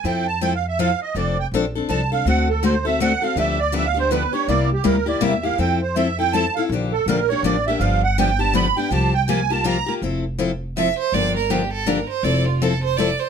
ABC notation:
X:1
M:3/4
L:1/16
Q:"Swing" 1/4=162
K:F
V:1 name="Accordion"
g2 a2 (3g2 f2 e2 f2 _e2 | d2 g2 z4 a2 f2 | ^f2 A2 c2 e2 f2 =f2 | e2 d2 (3e2 f2 c2 =B2 _d2 |
d2 G2 B2 d2 e2 f2 | g2 c2 e2 g2 a2 f2 | z2 A2 B2 _d2 =d2 e2 | f2 _g2 =g2 a2 =b2 g2 |
a2 g2 _a2 =a2 b3 z | z12 | z12 | z12 |]
V:2 name="Violin"
z12 | z12 | z12 | z12 |
z12 | z12 | z12 | z12 |
z12 | z8 e2 c2 | d2 B2 G2 A2 B2 c2 | d2 F2 A2 c2 d2 c2 |]
V:3 name="Steel-string acoustic guitar"
[F,CEA]2 z2 [F,CEA] z3 [F,CEA] z3 | [F,CDA]2 z2 [F,CDA] z [CDA]2 [F,CDA] z [CDA]2 | [D,A,C^FA]2 z2 [D,A,CFA] z [CFA]2 [D,A,CFA] z [CFA]2 | [D,F,=B,DG]2 z2 [D,F,B,DG] z [B,DG]2 [D,F,B,DG] z [B,DG]2 |
[C,G,B,EG]2 z2 [C,G,B,EG] z [B,EG]2 [C,G,B,EG] z [B,EG]2 | [F,CEA]2 z2 [F,CEA] z [CEA]2 [F,CEA] z [CEA]2 | [D,F,B,DG]2 z2 [D,F,B,DG] z [B,DG]2 [D,F,B,DG] z [B,DG]2 | [D,F,=B,DG]2 z2 [D,F,B,DG] z [B,DG]2 [D,F,B,DG] z [B,DG]2 |
[C,F,B,FG]2 z2 [C,F,B,FG] z [B,FG]2 [C,F,B,FG] z [B,FG]2 | [F,CEA]2 z2 [F,CEA] z3 [F,CEA] z3 | [D,F,B,DG]2 z2 [D,F,B,DG] z3 [D,F,B,DG] z3 | [F,CEA]2 z2 [F,CEA] z3 [F,CEA] z3 |]
V:4 name="Upright bass" clef=bass
F,,12 | F,,,4 B,,,4 C,,4 | D,,12 | D,,12 |
C,,4 D,,4 E,,4 | F,,12 | B,,,4 B,,,4 A,,,4 | G,,,12 |
C,,12 | F,,,12 | G,,,12 | F,,,12 |]